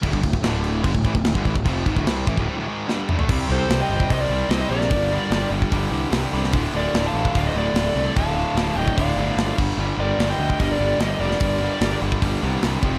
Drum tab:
CC |x-x-x-x-x-x-x-x-|x-x-x-x---------|x---------------|----------------|
HH |----------------|----------------|----o---o---o---|o---o---o---o---|
SD |----o-------o---|----o-------o---|----o-------o--o|----o-------o--o|
T2 |----------------|--------------o-|----------------|----------------|
FT |----------------|---------------o|----------------|----------------|
BD |oooo----oooo-ooo|o-oo--oo--------|o------oo-------|o------oo-------|

CC |----------------|--------------x-|----------------|----------------|
HH |o---o---o---o---|o---o---o---o---|----o---o---o---|o---o---o---o---|
SD |----o-------o---|----o-------o---|----o-------o--o|----o-------o---|
T2 |----------------|----------------|----------------|----------------|
FT |----------------|----------------|----------------|----------------|
BD |o------oo-------|o------oo-----o-|-------oo-------|o------oo-----o-|